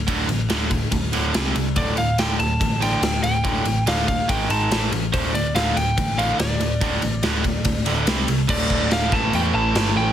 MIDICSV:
0, 0, Header, 1, 5, 480
1, 0, Start_track
1, 0, Tempo, 420757
1, 78, Time_signature, 4, 2, 24, 8
1, 11552, End_track
2, 0, Start_track
2, 0, Title_t, "Lead electric guitar"
2, 0, Program_c, 0, 29
2, 2024, Note_on_c, 0, 74, 91
2, 2241, Note_off_c, 0, 74, 0
2, 2258, Note_on_c, 0, 77, 81
2, 2499, Note_on_c, 0, 79, 85
2, 2501, Note_off_c, 0, 77, 0
2, 2730, Note_off_c, 0, 79, 0
2, 2734, Note_on_c, 0, 81, 102
2, 3216, Note_off_c, 0, 81, 0
2, 3221, Note_on_c, 0, 79, 99
2, 3675, Note_off_c, 0, 79, 0
2, 3689, Note_on_c, 0, 79, 99
2, 4429, Note_on_c, 0, 77, 88
2, 4434, Note_off_c, 0, 79, 0
2, 4643, Note_off_c, 0, 77, 0
2, 4657, Note_on_c, 0, 77, 99
2, 4898, Note_on_c, 0, 79, 96
2, 4903, Note_off_c, 0, 77, 0
2, 5136, Note_off_c, 0, 79, 0
2, 5141, Note_on_c, 0, 81, 94
2, 5585, Note_off_c, 0, 81, 0
2, 5859, Note_on_c, 0, 72, 87
2, 6080, Note_off_c, 0, 72, 0
2, 6098, Note_on_c, 0, 74, 82
2, 6320, Note_off_c, 0, 74, 0
2, 6335, Note_on_c, 0, 77, 90
2, 6577, Note_on_c, 0, 79, 99
2, 6583, Note_off_c, 0, 77, 0
2, 7054, Note_on_c, 0, 77, 77
2, 7070, Note_off_c, 0, 79, 0
2, 7295, Note_off_c, 0, 77, 0
2, 7299, Note_on_c, 0, 74, 77
2, 9166, Note_off_c, 0, 74, 0
2, 9698, Note_on_c, 0, 74, 105
2, 10178, Note_off_c, 0, 74, 0
2, 10182, Note_on_c, 0, 77, 92
2, 10415, Note_on_c, 0, 81, 100
2, 10419, Note_off_c, 0, 77, 0
2, 10655, Note_off_c, 0, 81, 0
2, 10666, Note_on_c, 0, 79, 100
2, 10727, Note_off_c, 0, 79, 0
2, 10892, Note_on_c, 0, 81, 100
2, 11372, Note_off_c, 0, 81, 0
2, 11376, Note_on_c, 0, 79, 89
2, 11552, Note_off_c, 0, 79, 0
2, 11552, End_track
3, 0, Start_track
3, 0, Title_t, "Overdriven electric guitar"
3, 0, Program_c, 1, 29
3, 76, Note_on_c, 1, 38, 81
3, 81, Note_on_c, 1, 45, 87
3, 90, Note_on_c, 1, 50, 85
3, 304, Note_off_c, 1, 38, 0
3, 306, Note_off_c, 1, 45, 0
3, 311, Note_off_c, 1, 50, 0
3, 321, Note_on_c, 1, 38, 74
3, 324, Note_on_c, 1, 45, 72
3, 537, Note_off_c, 1, 38, 0
3, 539, Note_off_c, 1, 45, 0
3, 556, Note_on_c, 1, 38, 79
3, 567, Note_on_c, 1, 45, 92
3, 572, Note_on_c, 1, 50, 89
3, 785, Note_off_c, 1, 38, 0
3, 790, Note_off_c, 1, 45, 0
3, 793, Note_off_c, 1, 50, 0
3, 801, Note_on_c, 1, 38, 69
3, 805, Note_on_c, 1, 45, 76
3, 1019, Note_off_c, 1, 38, 0
3, 1020, Note_off_c, 1, 45, 0
3, 1043, Note_on_c, 1, 38, 77
3, 1047, Note_on_c, 1, 45, 83
3, 1260, Note_off_c, 1, 38, 0
3, 1262, Note_off_c, 1, 45, 0
3, 1281, Note_on_c, 1, 38, 90
3, 1290, Note_on_c, 1, 45, 100
3, 1299, Note_on_c, 1, 50, 92
3, 1510, Note_off_c, 1, 38, 0
3, 1514, Note_off_c, 1, 45, 0
3, 1518, Note_off_c, 1, 50, 0
3, 1530, Note_on_c, 1, 48, 81
3, 1540, Note_on_c, 1, 55, 78
3, 1547, Note_on_c, 1, 60, 90
3, 1754, Note_off_c, 1, 48, 0
3, 1759, Note_off_c, 1, 55, 0
3, 1763, Note_off_c, 1, 60, 0
3, 1780, Note_on_c, 1, 48, 68
3, 1787, Note_on_c, 1, 55, 75
3, 1990, Note_off_c, 1, 48, 0
3, 1994, Note_off_c, 1, 55, 0
3, 2006, Note_on_c, 1, 38, 87
3, 2012, Note_on_c, 1, 45, 90
3, 2020, Note_on_c, 1, 50, 80
3, 2233, Note_off_c, 1, 38, 0
3, 2236, Note_off_c, 1, 45, 0
3, 2240, Note_off_c, 1, 50, 0
3, 2248, Note_on_c, 1, 38, 77
3, 2252, Note_on_c, 1, 45, 77
3, 2465, Note_off_c, 1, 38, 0
3, 2467, Note_off_c, 1, 45, 0
3, 2492, Note_on_c, 1, 38, 92
3, 2497, Note_on_c, 1, 45, 91
3, 2506, Note_on_c, 1, 50, 87
3, 2715, Note_off_c, 1, 38, 0
3, 2717, Note_off_c, 1, 45, 0
3, 2724, Note_off_c, 1, 50, 0
3, 2728, Note_on_c, 1, 38, 62
3, 2731, Note_on_c, 1, 45, 74
3, 2946, Note_off_c, 1, 38, 0
3, 2947, Note_off_c, 1, 45, 0
3, 2967, Note_on_c, 1, 38, 76
3, 2974, Note_on_c, 1, 45, 88
3, 3185, Note_off_c, 1, 38, 0
3, 3189, Note_off_c, 1, 45, 0
3, 3198, Note_on_c, 1, 38, 88
3, 3205, Note_on_c, 1, 45, 100
3, 3214, Note_on_c, 1, 50, 97
3, 3426, Note_off_c, 1, 38, 0
3, 3429, Note_off_c, 1, 45, 0
3, 3439, Note_off_c, 1, 50, 0
3, 3440, Note_on_c, 1, 38, 67
3, 3443, Note_on_c, 1, 45, 81
3, 3663, Note_off_c, 1, 38, 0
3, 3664, Note_off_c, 1, 45, 0
3, 3680, Note_on_c, 1, 38, 66
3, 3683, Note_on_c, 1, 45, 65
3, 3903, Note_off_c, 1, 38, 0
3, 3904, Note_off_c, 1, 45, 0
3, 3919, Note_on_c, 1, 38, 84
3, 3925, Note_on_c, 1, 45, 89
3, 3935, Note_on_c, 1, 50, 92
3, 4149, Note_off_c, 1, 38, 0
3, 4149, Note_off_c, 1, 45, 0
3, 4160, Note_off_c, 1, 50, 0
3, 4163, Note_on_c, 1, 38, 69
3, 4163, Note_on_c, 1, 45, 73
3, 4385, Note_off_c, 1, 38, 0
3, 4385, Note_off_c, 1, 45, 0
3, 4407, Note_on_c, 1, 38, 86
3, 4413, Note_on_c, 1, 45, 92
3, 4418, Note_on_c, 1, 50, 98
3, 4637, Note_off_c, 1, 38, 0
3, 4640, Note_off_c, 1, 45, 0
3, 4642, Note_off_c, 1, 50, 0
3, 4652, Note_on_c, 1, 38, 66
3, 4653, Note_on_c, 1, 45, 74
3, 4870, Note_off_c, 1, 38, 0
3, 4870, Note_off_c, 1, 45, 0
3, 4883, Note_on_c, 1, 44, 89
3, 4888, Note_on_c, 1, 51, 98
3, 4894, Note_on_c, 1, 56, 107
3, 5111, Note_off_c, 1, 44, 0
3, 5118, Note_off_c, 1, 51, 0
3, 5120, Note_off_c, 1, 56, 0
3, 5124, Note_on_c, 1, 44, 94
3, 5132, Note_on_c, 1, 51, 86
3, 5136, Note_on_c, 1, 56, 92
3, 5356, Note_off_c, 1, 44, 0
3, 5359, Note_off_c, 1, 51, 0
3, 5361, Note_off_c, 1, 56, 0
3, 5367, Note_on_c, 1, 45, 84
3, 5380, Note_on_c, 1, 52, 92
3, 5383, Note_on_c, 1, 57, 90
3, 5597, Note_off_c, 1, 45, 0
3, 5603, Note_off_c, 1, 52, 0
3, 5605, Note_off_c, 1, 57, 0
3, 5610, Note_on_c, 1, 45, 63
3, 5616, Note_on_c, 1, 52, 76
3, 5829, Note_off_c, 1, 45, 0
3, 5832, Note_off_c, 1, 52, 0
3, 5843, Note_on_c, 1, 38, 85
3, 5848, Note_on_c, 1, 45, 92
3, 5852, Note_on_c, 1, 50, 90
3, 6075, Note_off_c, 1, 38, 0
3, 6078, Note_off_c, 1, 45, 0
3, 6079, Note_off_c, 1, 50, 0
3, 6094, Note_on_c, 1, 38, 72
3, 6099, Note_on_c, 1, 45, 76
3, 6311, Note_off_c, 1, 38, 0
3, 6313, Note_off_c, 1, 45, 0
3, 6327, Note_on_c, 1, 38, 81
3, 6332, Note_on_c, 1, 45, 98
3, 6342, Note_on_c, 1, 50, 105
3, 6551, Note_off_c, 1, 38, 0
3, 6557, Note_off_c, 1, 45, 0
3, 6565, Note_off_c, 1, 50, 0
3, 6565, Note_on_c, 1, 38, 76
3, 6570, Note_on_c, 1, 45, 73
3, 6786, Note_off_c, 1, 38, 0
3, 6789, Note_off_c, 1, 45, 0
3, 6813, Note_on_c, 1, 38, 78
3, 6818, Note_on_c, 1, 45, 84
3, 7030, Note_off_c, 1, 38, 0
3, 7032, Note_off_c, 1, 45, 0
3, 7047, Note_on_c, 1, 38, 100
3, 7058, Note_on_c, 1, 45, 95
3, 7060, Note_on_c, 1, 50, 102
3, 7276, Note_off_c, 1, 38, 0
3, 7282, Note_off_c, 1, 45, 0
3, 7283, Note_off_c, 1, 50, 0
3, 7291, Note_on_c, 1, 38, 65
3, 7293, Note_on_c, 1, 45, 79
3, 7508, Note_off_c, 1, 38, 0
3, 7510, Note_off_c, 1, 45, 0
3, 7530, Note_on_c, 1, 38, 63
3, 7534, Note_on_c, 1, 45, 77
3, 7748, Note_off_c, 1, 38, 0
3, 7750, Note_off_c, 1, 45, 0
3, 7764, Note_on_c, 1, 38, 85
3, 7776, Note_on_c, 1, 45, 83
3, 7780, Note_on_c, 1, 50, 89
3, 7994, Note_off_c, 1, 38, 0
3, 8000, Note_off_c, 1, 45, 0
3, 8002, Note_off_c, 1, 50, 0
3, 8007, Note_on_c, 1, 38, 68
3, 8012, Note_on_c, 1, 45, 76
3, 8226, Note_off_c, 1, 38, 0
3, 8228, Note_off_c, 1, 45, 0
3, 8244, Note_on_c, 1, 38, 90
3, 8252, Note_on_c, 1, 45, 86
3, 8260, Note_on_c, 1, 50, 94
3, 8473, Note_off_c, 1, 38, 0
3, 8477, Note_off_c, 1, 45, 0
3, 8481, Note_off_c, 1, 50, 0
3, 8485, Note_on_c, 1, 38, 62
3, 8490, Note_on_c, 1, 45, 74
3, 8704, Note_off_c, 1, 38, 0
3, 8706, Note_off_c, 1, 45, 0
3, 8727, Note_on_c, 1, 38, 77
3, 8730, Note_on_c, 1, 45, 90
3, 8944, Note_off_c, 1, 38, 0
3, 8946, Note_off_c, 1, 45, 0
3, 8960, Note_on_c, 1, 38, 93
3, 8973, Note_on_c, 1, 45, 103
3, 8977, Note_on_c, 1, 50, 99
3, 9190, Note_off_c, 1, 38, 0
3, 9196, Note_off_c, 1, 45, 0
3, 9199, Note_off_c, 1, 50, 0
3, 9212, Note_on_c, 1, 48, 68
3, 9219, Note_on_c, 1, 55, 81
3, 9223, Note_on_c, 1, 60, 81
3, 9435, Note_off_c, 1, 48, 0
3, 9439, Note_off_c, 1, 55, 0
3, 9441, Note_off_c, 1, 60, 0
3, 9447, Note_on_c, 1, 48, 72
3, 9452, Note_on_c, 1, 55, 72
3, 9663, Note_off_c, 1, 48, 0
3, 9665, Note_off_c, 1, 55, 0
3, 9667, Note_on_c, 1, 38, 95
3, 9693, Note_on_c, 1, 45, 96
3, 9709, Note_on_c, 1, 50, 91
3, 10373, Note_off_c, 1, 45, 0
3, 10379, Note_off_c, 1, 38, 0
3, 10387, Note_on_c, 1, 45, 100
3, 10400, Note_off_c, 1, 50, 0
3, 10414, Note_on_c, 1, 52, 96
3, 10429, Note_on_c, 1, 57, 116
3, 11088, Note_off_c, 1, 45, 0
3, 11102, Note_on_c, 1, 45, 77
3, 11109, Note_off_c, 1, 52, 0
3, 11117, Note_off_c, 1, 57, 0
3, 11125, Note_on_c, 1, 52, 78
3, 11142, Note_on_c, 1, 57, 75
3, 11552, Note_off_c, 1, 45, 0
3, 11552, Note_off_c, 1, 52, 0
3, 11552, Note_off_c, 1, 57, 0
3, 11552, End_track
4, 0, Start_track
4, 0, Title_t, "Picked electric bass"
4, 0, Program_c, 2, 34
4, 90, Note_on_c, 2, 26, 86
4, 272, Note_off_c, 2, 26, 0
4, 323, Note_on_c, 2, 33, 77
4, 509, Note_off_c, 2, 33, 0
4, 563, Note_on_c, 2, 26, 80
4, 936, Note_off_c, 2, 26, 0
4, 1047, Note_on_c, 2, 26, 90
4, 1233, Note_off_c, 2, 26, 0
4, 1292, Note_on_c, 2, 26, 86
4, 1476, Note_off_c, 2, 26, 0
4, 1535, Note_on_c, 2, 36, 74
4, 1718, Note_off_c, 2, 36, 0
4, 1774, Note_on_c, 2, 36, 81
4, 2012, Note_on_c, 2, 26, 77
4, 2029, Note_off_c, 2, 36, 0
4, 2197, Note_off_c, 2, 26, 0
4, 2255, Note_on_c, 2, 26, 77
4, 2439, Note_off_c, 2, 26, 0
4, 2489, Note_on_c, 2, 26, 80
4, 2676, Note_off_c, 2, 26, 0
4, 2730, Note_on_c, 2, 26, 88
4, 2917, Note_off_c, 2, 26, 0
4, 2977, Note_on_c, 2, 33, 84
4, 3348, Note_off_c, 2, 33, 0
4, 3444, Note_on_c, 2, 26, 77
4, 3634, Note_off_c, 2, 26, 0
4, 3688, Note_on_c, 2, 26, 80
4, 3876, Note_off_c, 2, 26, 0
4, 3929, Note_on_c, 2, 26, 85
4, 4117, Note_off_c, 2, 26, 0
4, 4168, Note_on_c, 2, 33, 77
4, 4357, Note_off_c, 2, 33, 0
4, 4405, Note_on_c, 2, 26, 84
4, 4781, Note_off_c, 2, 26, 0
4, 4898, Note_on_c, 2, 32, 86
4, 5083, Note_off_c, 2, 32, 0
4, 5129, Note_on_c, 2, 32, 75
4, 5318, Note_off_c, 2, 32, 0
4, 5368, Note_on_c, 2, 33, 79
4, 5558, Note_off_c, 2, 33, 0
4, 5610, Note_on_c, 2, 33, 83
4, 5798, Note_off_c, 2, 33, 0
4, 5857, Note_on_c, 2, 26, 85
4, 6043, Note_off_c, 2, 26, 0
4, 6090, Note_on_c, 2, 26, 83
4, 6278, Note_off_c, 2, 26, 0
4, 6331, Note_on_c, 2, 26, 87
4, 6519, Note_off_c, 2, 26, 0
4, 6571, Note_on_c, 2, 26, 101
4, 6759, Note_off_c, 2, 26, 0
4, 6817, Note_on_c, 2, 33, 98
4, 7189, Note_off_c, 2, 33, 0
4, 7297, Note_on_c, 2, 26, 85
4, 7482, Note_off_c, 2, 26, 0
4, 7525, Note_on_c, 2, 26, 85
4, 7715, Note_off_c, 2, 26, 0
4, 7774, Note_on_c, 2, 26, 92
4, 7959, Note_off_c, 2, 26, 0
4, 8015, Note_on_c, 2, 33, 85
4, 8200, Note_off_c, 2, 33, 0
4, 8254, Note_on_c, 2, 26, 82
4, 8625, Note_off_c, 2, 26, 0
4, 8729, Note_on_c, 2, 26, 85
4, 8915, Note_off_c, 2, 26, 0
4, 8972, Note_on_c, 2, 26, 78
4, 9157, Note_off_c, 2, 26, 0
4, 9206, Note_on_c, 2, 36, 89
4, 9393, Note_off_c, 2, 36, 0
4, 9451, Note_on_c, 2, 36, 83
4, 9636, Note_off_c, 2, 36, 0
4, 9684, Note_on_c, 2, 26, 96
4, 9876, Note_off_c, 2, 26, 0
4, 9925, Note_on_c, 2, 26, 81
4, 10116, Note_off_c, 2, 26, 0
4, 10170, Note_on_c, 2, 26, 95
4, 10358, Note_off_c, 2, 26, 0
4, 10408, Note_on_c, 2, 33, 100
4, 10596, Note_off_c, 2, 33, 0
4, 10643, Note_on_c, 2, 40, 97
4, 10832, Note_off_c, 2, 40, 0
4, 10874, Note_on_c, 2, 33, 84
4, 11067, Note_off_c, 2, 33, 0
4, 11118, Note_on_c, 2, 31, 96
4, 11308, Note_off_c, 2, 31, 0
4, 11349, Note_on_c, 2, 33, 95
4, 11543, Note_off_c, 2, 33, 0
4, 11552, End_track
5, 0, Start_track
5, 0, Title_t, "Drums"
5, 89, Note_on_c, 9, 36, 96
5, 93, Note_on_c, 9, 51, 95
5, 203, Note_off_c, 9, 36, 0
5, 207, Note_off_c, 9, 51, 0
5, 328, Note_on_c, 9, 51, 68
5, 443, Note_off_c, 9, 51, 0
5, 567, Note_on_c, 9, 51, 89
5, 575, Note_on_c, 9, 38, 97
5, 681, Note_off_c, 9, 51, 0
5, 689, Note_off_c, 9, 38, 0
5, 805, Note_on_c, 9, 51, 67
5, 810, Note_on_c, 9, 36, 73
5, 919, Note_off_c, 9, 51, 0
5, 924, Note_off_c, 9, 36, 0
5, 1046, Note_on_c, 9, 51, 91
5, 1050, Note_on_c, 9, 36, 103
5, 1160, Note_off_c, 9, 51, 0
5, 1164, Note_off_c, 9, 36, 0
5, 1287, Note_on_c, 9, 51, 71
5, 1401, Note_off_c, 9, 51, 0
5, 1532, Note_on_c, 9, 51, 100
5, 1540, Note_on_c, 9, 38, 118
5, 1646, Note_off_c, 9, 51, 0
5, 1654, Note_off_c, 9, 38, 0
5, 1774, Note_on_c, 9, 51, 71
5, 1888, Note_off_c, 9, 51, 0
5, 2007, Note_on_c, 9, 51, 80
5, 2013, Note_on_c, 9, 36, 92
5, 2121, Note_off_c, 9, 51, 0
5, 2127, Note_off_c, 9, 36, 0
5, 2245, Note_on_c, 9, 51, 62
5, 2360, Note_off_c, 9, 51, 0
5, 2492, Note_on_c, 9, 51, 80
5, 2500, Note_on_c, 9, 38, 101
5, 2606, Note_off_c, 9, 51, 0
5, 2614, Note_off_c, 9, 38, 0
5, 2733, Note_on_c, 9, 51, 57
5, 2847, Note_off_c, 9, 51, 0
5, 2975, Note_on_c, 9, 36, 103
5, 2979, Note_on_c, 9, 51, 79
5, 3089, Note_off_c, 9, 36, 0
5, 3093, Note_off_c, 9, 51, 0
5, 3218, Note_on_c, 9, 51, 68
5, 3332, Note_off_c, 9, 51, 0
5, 3454, Note_on_c, 9, 51, 87
5, 3462, Note_on_c, 9, 38, 110
5, 3568, Note_off_c, 9, 51, 0
5, 3576, Note_off_c, 9, 38, 0
5, 3691, Note_on_c, 9, 51, 69
5, 3805, Note_off_c, 9, 51, 0
5, 3929, Note_on_c, 9, 51, 77
5, 3932, Note_on_c, 9, 36, 101
5, 4043, Note_off_c, 9, 51, 0
5, 4046, Note_off_c, 9, 36, 0
5, 4168, Note_on_c, 9, 51, 65
5, 4282, Note_off_c, 9, 51, 0
5, 4415, Note_on_c, 9, 51, 84
5, 4423, Note_on_c, 9, 38, 93
5, 4529, Note_off_c, 9, 51, 0
5, 4537, Note_off_c, 9, 38, 0
5, 4656, Note_on_c, 9, 51, 61
5, 4657, Note_on_c, 9, 36, 71
5, 4770, Note_off_c, 9, 51, 0
5, 4771, Note_off_c, 9, 36, 0
5, 4896, Note_on_c, 9, 36, 105
5, 4896, Note_on_c, 9, 51, 89
5, 5010, Note_off_c, 9, 36, 0
5, 5010, Note_off_c, 9, 51, 0
5, 5134, Note_on_c, 9, 51, 75
5, 5248, Note_off_c, 9, 51, 0
5, 5379, Note_on_c, 9, 51, 97
5, 5387, Note_on_c, 9, 38, 110
5, 5493, Note_off_c, 9, 51, 0
5, 5501, Note_off_c, 9, 38, 0
5, 5617, Note_on_c, 9, 51, 72
5, 5731, Note_off_c, 9, 51, 0
5, 5859, Note_on_c, 9, 36, 97
5, 5859, Note_on_c, 9, 51, 91
5, 5973, Note_off_c, 9, 36, 0
5, 5973, Note_off_c, 9, 51, 0
5, 6104, Note_on_c, 9, 51, 68
5, 6218, Note_off_c, 9, 51, 0
5, 6339, Note_on_c, 9, 51, 82
5, 6347, Note_on_c, 9, 38, 89
5, 6453, Note_off_c, 9, 51, 0
5, 6461, Note_off_c, 9, 38, 0
5, 6582, Note_on_c, 9, 51, 65
5, 6696, Note_off_c, 9, 51, 0
5, 6818, Note_on_c, 9, 51, 85
5, 6819, Note_on_c, 9, 36, 100
5, 6932, Note_off_c, 9, 51, 0
5, 6933, Note_off_c, 9, 36, 0
5, 7062, Note_on_c, 9, 51, 64
5, 7176, Note_off_c, 9, 51, 0
5, 7295, Note_on_c, 9, 51, 88
5, 7303, Note_on_c, 9, 38, 121
5, 7409, Note_off_c, 9, 51, 0
5, 7417, Note_off_c, 9, 38, 0
5, 7534, Note_on_c, 9, 51, 64
5, 7649, Note_off_c, 9, 51, 0
5, 7773, Note_on_c, 9, 36, 107
5, 7773, Note_on_c, 9, 51, 86
5, 7887, Note_off_c, 9, 36, 0
5, 7887, Note_off_c, 9, 51, 0
5, 8009, Note_on_c, 9, 51, 61
5, 8123, Note_off_c, 9, 51, 0
5, 8247, Note_on_c, 9, 51, 84
5, 8255, Note_on_c, 9, 38, 105
5, 8361, Note_off_c, 9, 51, 0
5, 8369, Note_off_c, 9, 38, 0
5, 8491, Note_on_c, 9, 51, 70
5, 8492, Note_on_c, 9, 36, 67
5, 8605, Note_off_c, 9, 51, 0
5, 8606, Note_off_c, 9, 36, 0
5, 8722, Note_on_c, 9, 51, 85
5, 8730, Note_on_c, 9, 36, 114
5, 8836, Note_off_c, 9, 51, 0
5, 8844, Note_off_c, 9, 36, 0
5, 8964, Note_on_c, 9, 51, 68
5, 9078, Note_off_c, 9, 51, 0
5, 9205, Note_on_c, 9, 51, 98
5, 9213, Note_on_c, 9, 38, 118
5, 9319, Note_off_c, 9, 51, 0
5, 9327, Note_off_c, 9, 38, 0
5, 9445, Note_on_c, 9, 51, 79
5, 9559, Note_off_c, 9, 51, 0
5, 9681, Note_on_c, 9, 49, 125
5, 9681, Note_on_c, 9, 57, 66
5, 9685, Note_on_c, 9, 36, 109
5, 9795, Note_off_c, 9, 49, 0
5, 9795, Note_off_c, 9, 57, 0
5, 9799, Note_off_c, 9, 36, 0
5, 9927, Note_on_c, 9, 36, 77
5, 10041, Note_off_c, 9, 36, 0
5, 10165, Note_on_c, 9, 57, 63
5, 10173, Note_on_c, 9, 38, 99
5, 10279, Note_off_c, 9, 57, 0
5, 10287, Note_off_c, 9, 38, 0
5, 10406, Note_on_c, 9, 36, 102
5, 10418, Note_on_c, 9, 38, 30
5, 10520, Note_off_c, 9, 36, 0
5, 10532, Note_off_c, 9, 38, 0
5, 10646, Note_on_c, 9, 57, 64
5, 10760, Note_off_c, 9, 57, 0
5, 11125, Note_on_c, 9, 57, 67
5, 11133, Note_on_c, 9, 38, 127
5, 11239, Note_off_c, 9, 57, 0
5, 11247, Note_off_c, 9, 38, 0
5, 11552, End_track
0, 0, End_of_file